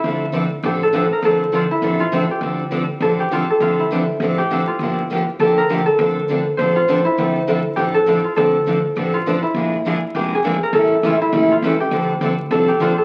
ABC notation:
X:1
M:4/4
L:1/8
Q:"Swing" 1/4=202
K:Dm
V:1 name="Harp"
E4 G A2 B | A2 F E2 F2 G- | G4 A G F A | F E4 G2 F- |
F4 A B2 A- | A4 c F2 E- | E3 z G A2 F | A4- A F2 E- |
E4 G _A2 B | A2 F E2 F2 G- | G4 A G F A |]
V:2 name="Steel-string acoustic guitar"
[D,F,CDA] z [D,F,CDA] z [D,F,CDA] z [D,F,CDA] z | [D,F,CDA] z [D,F,CDA] z [D,F,CDA] z [D,F,CDA] z | [D,F,CDA] z [D,F,CDA] z [D,F,CDA] z [D,F,CDA] z | [D,F,CDA] z [D,F,CDA] z [D,F,CDA] z [D,F,CDA] z |
[D,F,B,DG] z [D,F,B,DG] z [D,F,B,DG] z [D,F,B,DG] z | [D,F,CDA] z [D,F,CDA] z [D,F,CDA] z [D,F,CDA] z | [D,F,CDA] z [D,F,CDA] z [D,F,CDA] z [D,F,CDA] z | [D,F,CDA] z [D,F,CDA] z [D,F,CDA] z [D,F,CDA] z |
[F,_A,DFB] z [F,A,DFB] z [F,A,DFB] z [F,A,DFB] z | [^C,E,A,^CG] z [C,E,A,CG] z [C,E,A,CG] z [C,E,A,CG] z | [D,F,CDA] z [D,F,CDA] z [D,F,CDA] z [D,F,CDA] z |]
V:3 name="Steel-string acoustic guitar"
[D,F,CDA] z [D,F,CDA] z [D,F,CDA] z [D,F,CDA] z | [D,F,CDA] z [D,F,CDA] z [D,F,CDA] z [D,F,CDA] z | [D,F,CDA] z [D,F,CDA] z [D,F,CDA] z [D,F,CDA] z | [D,F,CDA] z [D,F,CDA] z [D,F,CDA] z [D,F,CDA] z |
[D,F,B,DG] z [D,F,B,DG] z [D,F,B,DG] z [D,F,B,DG] z | [D,F,CDA] z [D,F,CDA] z [D,F,CDA] z [D,F,CDA] z | [D,F,CDA] z [D,F,CDA] z [D,F,CDA] z [D,F,CDA] z | [D,F,CDA] z [D,F,CDA] z [D,F,CDA] z [D,F,CDA] z |
[D,F,B,D_A] z [D,F,B,DA] z [D,F,B,DA] z [D,F,B,DA] z | [E,G,^CEA] z [E,G,CEA] z [E,G,CEA] z [E,G,CEA] z | [D,F,CDA] z [D,F,CDA] z [D,F,CDA] z [D,F,CDA] z |]
V:4 name="Upright bass" clef=bass
D,,4 A,,,4 | D,,4 A,,,4 | D,,4 A,,,4 | D,,4 A,,,4 |
G,,,4 D,,4 | D,,4 A,,,4 | D,,4 A,,,4 | D,,4 A,,,4 |
B,,,4 F,,,4 | A,,,2 A,,,2 B,,,2 ^C,,2 | D,,2 D,,2 C,,2 B,,,2 |]